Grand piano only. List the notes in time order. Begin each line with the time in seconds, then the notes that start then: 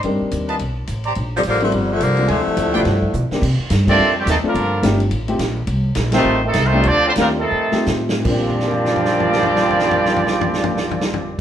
0.04 G3 C4 D4 D#4 A#4
1.61 G3 C4 D4 F4 A#4
2.19 G#3 C4 D4 F4 A#4
2.74 A3 B3 D4 F4 G4
3.31 A#3 C4 D4 D#4 G4
3.87 A3 C4 D#4 F4 G4
4.43 A3 C4 D4 F4 A4
4.83 A3 C4 D4 F4 G4
5.28 A3 C4 D#4 F4 G4
6.14 A3 C4 D#4 F4 G4
6.73 A3 C4 D4 F4 G4
7.17 A3 C4 D4 F4 G4
7.71 A3 C4 D#4 F4 G4
8.21 A#2 A#3
8.27 C4 D4
8.33 G4
8.67 A#4
8.75 D5
8.82 G5
8.92 A#5
9.02 D6
9.12 G6
9.24 A#6